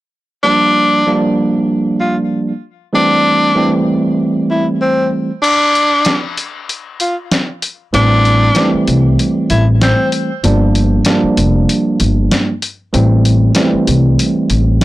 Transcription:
0.43 tine electric piano F3 G3 A#3 D4, tenor saxophone D4
1.07 tine electric piano F3 G3 A#3 D4
2.00 tenor saxophone F4
2.93 tine electric piano E3 G3 A3 C4, tenor saxophone D4
3.55 tine electric piano E3 G3 A3 C4
4.50 tenor saxophone E4
4.81 tenor saxophone C4
5.42 tenor saxophone D4, closed hi-hat, crash
5.75 closed hi-hat
6.05 snare, closed hi-hat
6.38 closed hi-hat
6.69 closed hi-hat
7.00 tenor saxophone F4, closed hi-hat
7.32 snare, closed hi-hat
7.62 closed hi-hat
7.93 upright bass A1, tine electric piano E3 G3 A3 C4, tenor saxophone D4, closed hi-hat
8.25 closed hi-hat
8.55 tine electric piano E3 G3 A3 C4, snare, closed hi-hat
8.74 muted upright bass stroke
8.88 upright bass C2, closed hi-hat
9.19 closed hi-hat
9.50 upright bass A1, tenor saxophone E4, closed hi-hat
9.81 tenor saxophone C4, snare, closed hi-hat
10.12 closed hi-hat
10.44 upright bass G1, tine electric piano F3 G3 A#3 D4, closed hi-hat
10.75 closed hi-hat
11.05 tine electric piano F3 G3 A#3 D4, snare, closed hi-hat
11.24 muted upright bass stroke
11.37 upright bass F1, closed hi-hat
11.69 closed hi-hat
12.00 upright bass G1, closed hi-hat
12.31 snare, closed hi-hat
12.62 closed hi-hat
12.93 upright bass A1, tine electric piano E3 G3 A3 C4, closed hi-hat
13.25 closed hi-hat
13.55 tine electric piano E3 G3 A3 C4, snare, closed hi-hat
13.74 muted upright bass stroke
13.87 upright bass C2, closed hi-hat
14.19 closed hi-hat
14.50 upright bass A1, closed hi-hat
14.81 snare, closed hi-hat

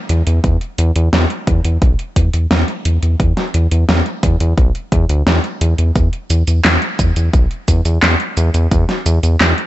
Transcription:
0.09 analog synth bass E2, closed hi-hat
0.27 analog synth bass E2, closed hi-hat
0.44 analog synth bass E2, kick, closed hi-hat
0.61 closed hi-hat
0.78 analog synth bass E2, closed hi-hat
0.96 analog synth bass E2, closed hi-hat
1.13 analog synth bass E2, snare, closed hi-hat
1.30 closed hi-hat
1.47 analog synth bass E2, kick, closed hi-hat
1.65 analog synth bass E2, closed hi-hat
1.82 analog synth bass B1, kick, closed hi-hat
1.99 closed hi-hat
2.16 analog synth bass E2, kick, closed hi-hat
2.33 analog synth bass E2, closed hi-hat
2.51 analog synth bass E2, snare, closed hi-hat
2.68 closed hi-hat
2.85 analog synth bass E2, closed hi-hat
3.02 analog synth bass E2, closed hi-hat
3.20 analog synth bass E2, kick, closed hi-hat
3.37 snare, closed hi-hat
3.54 analog synth bass E2, closed hi-hat
3.71 analog synth bass E2, closed hi-hat
3.89 analog synth bass E2, snare, closed hi-hat
4.06 closed hi-hat
4.23 analog synth bass E2, kick, closed hi-hat
4.40 analog synth bass E2, closed hi-hat
4.58 analog synth bass B1, kick, closed hi-hat
4.75 closed hi-hat
4.92 analog synth bass E2, kick, closed hi-hat
5.09 analog synth bass D2, closed hi-hat
5.26 analog synth bass E2, snare, closed hi-hat
5.44 closed hi-hat
5.61 analog synth bass E2, closed hi-hat
5.78 analog synth bass E2, closed hi-hat
5.96 analog synth bass E2, kick, closed hi-hat, cabasa
6.13 closed hi-hat
6.30 analog synth bass E2, closed hi-hat, cabasa
6.47 analog synth bass E2, closed hi-hat, cabasa
6.64 analog synth bass E2, snare, clap, closed hi-hat, cabasa
6.82 closed hi-hat
6.99 analog synth bass E2, kick, closed hi-hat, cabasa
7.16 analog synth bass E2, closed hi-hat, cabasa
7.34 analog synth bass B1, kick, closed hi-hat, cabasa
7.51 closed hi-hat
7.68 analog synth bass E2, kick, closed hi-hat, cabasa
7.85 analog synth bass E2, closed hi-hat, cabasa
8.03 analog synth bass E2, snare, clap, closed hi-hat, cabasa
8.20 closed hi-hat
8.37 analog synth bass E2, closed hi-hat, cabasa
8.54 analog synth bass E2, closed hi-hat, cabasa
8.71 analog synth bass E2, kick, closed hi-hat, cabasa
8.89 snare, closed hi-hat
9.06 analog synth bass E2, closed hi-hat, cabasa
9.23 analog synth bass E2, closed hi-hat, cabasa
9.40 analog synth bass E2, snare, clap, closed hi-hat, cabasa
9.58 closed hi-hat

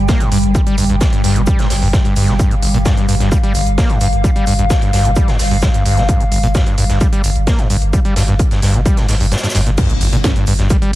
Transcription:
Already playing: synth drone G2 G3, ambient pad G5
0.08 acid bass A#3, kick, snare, closed hi-hat, shaker
0.20 acid bass G2, closed hi-hat
0.32 sub bass G1, acid bass G2, open hi-hat, shaker
0.44 sub bass G1, closed hi-hat
0.55 acid bass G3, kick, closed hi-hat, shaker
0.67 acid bass G3, closed hi-hat
0.78 sub bass G1, acid bass G2, open hi-hat, shaker
0.90 sub bass G1, acid bass G2, closed hi-hat
1.01 kick, snare, closed hi-hat, shaker
1.13 acid bass G2, closed hi-hat
1.24 sub bass G1, acid bass G2, snare, open hi-hat, shaker
1.36 sub bass G1, acid bass C3, closed hi-hat
1.47 acid bass G3, kick, closed hi-hat, shaker
1.59 acid bass G2, snare, closed hi-hat
1.70 sub bass G1, snare, open hi-hat, shaker
1.82 sub bass G1, acid bass G2, open hi-hat
1.93 acid bass G2, kick, snare, closed hi-hat, shaker
2.05 acid bass G2, closed hi-hat
2.16 sub bass G1, acid bass G2, ambient pad F5, open hi-hat, shaker
2.28 sub bass G1, acid bass C3, snare, closed hi-hat
2.39 acid bass G2, kick, closed hi-hat, shaker
2.51 acid bass D3, closed hi-hat
2.62 acid bass G1, sub bass G1, open hi-hat, shaker
2.74 sub bass G1, acid bass A#2, closed hi-hat
2.85 acid bass G2, kick, snare, closed hi-hat, shaker
2.97 acid bass G2, closed hi-hat
3.08 sub bass G1, acid bass G2, open hi-hat, shaker
3.20 sub bass G1, acid bass G2, snare, closed hi-hat
3.32 acid bass G3, kick, closed hi-hat, shaker
3.43 acid bass G3, closed hi-hat
3.54 sub bass G1, acid bass G1, open hi-hat, shaker
3.67 sub bass G1, closed hi-hat
3.78 acid bass A#3, kick, snare, closed hi-hat, shaker
3.90 acid bass G2, closed hi-hat
4.01 sub bass G1, acid bass G2, open hi-hat, shaker
4.13 sub bass G1, closed hi-hat
4.24 acid bass G3, kick, closed hi-hat, shaker
4.36 acid bass G3, closed hi-hat
4.46 sub bass G1, acid bass G2, open hi-hat, shaker
4.59 sub bass G1, acid bass G2, closed hi-hat
4.70 kick, snare, closed hi-hat, shaker
4.82 acid bass G2, closed hi-hat
4.93 sub bass G1, acid bass G2, snare, open hi-hat, shaker
5.05 sub bass G1, acid bass C3, closed hi-hat
5.16 acid bass G3, kick, closed hi-hat, shaker
5.28 acid bass G2, snare, closed hi-hat
5.39 sub bass G1, snare, open hi-hat, shaker
5.51 sub bass G1, acid bass G2, open hi-hat
5.62 acid bass G2, kick, snare, closed hi-hat, shaker
5.74 acid bass G2, closed hi-hat
5.85 sub bass G1, acid bass G2, open hi-hat, shaker
5.97 sub bass G1, acid bass C3, snare, closed hi-hat
6.09 acid bass G2, kick, closed hi-hat, shaker
6.20 acid bass D3, closed hi-hat
6.32 acid bass G1, sub bass G1, open hi-hat, shaker
6.43 sub bass G1, acid bass A#2, closed hi-hat
6.55 acid bass G2, kick, snare, closed hi-hat, shaker
6.67 acid bass G2, closed hi-hat
6.78 sub bass G1, acid bass G2, open hi-hat, shaker
6.89 sub bass G1, acid bass G2, snare, closed hi-hat
7.01 acid bass G3, kick, closed hi-hat, shaker
7.13 acid bass G3, closed hi-hat
7.24 acid bass G1, sub bass G1, open hi-hat, shaker
7.36 sub bass G1, closed hi-hat
7.47 acid bass A#3, kick, snare, closed hi-hat, shaker
7.59 acid bass G2, closed hi-hat
7.70 sub bass G1, acid bass G2, open hi-hat, shaker
7.82 sub bass G1, closed hi-hat
7.93 acid bass G3, kick, closed hi-hat, shaker
8.05 acid bass G3, closed hi-hat
8.16 sub bass G1, acid bass G2, snare, open hi-hat, shaker
8.28 sub bass G1, acid bass G2, closed hi-hat
8.39 kick, closed hi-hat, shaker
8.51 acid bass G2, snare, closed hi-hat
8.62 sub bass G1, acid bass G2, snare, open hi-hat, shaker
8.74 sub bass G1, acid bass C3, closed hi-hat
8.86 acid bass G3, kick, closed hi-hat, shaker
8.97 acid bass G2, snare, closed hi-hat
9.09 sub bass G1, acid bass G#2, snare, open hi-hat, shaker
9.20 sub bass G1, acid bass G2, open hi-hat
9.32 acid bass G2, snare, closed hi-hat, shaker
9.36 snare, shaker
9.43 acid bass G2, snare, closed hi-hat, shaker
9.49 snare, shaker
9.55 sub bass G1, acid bass G2, snare, open hi-hat, shaker
9.67 sub bass G1, acid bass A#2, closed hi-hat
9.78 acid bass G2, kick, closed hi-hat, crash, impact, shaker
9.90 acid bass D3, closed hi-hat
10.01 acid bass G1, sub bass G1, open hi-hat, shaker
10.12 sub bass G1, acid bass A#2, closed hi-hat
10.24 acid bass G2, kick, snare, closed hi-hat, shaker
10.36 acid bass G2, closed hi-hat
10.46 sub bass G1, acid bass G2, open hi-hat, shaker
10.59 sub bass G1, acid bass G2, snare, closed hi-hat
10.70 acid bass G3, kick, closed hi-hat, shaker
10.82 acid bass G3, closed hi-hat

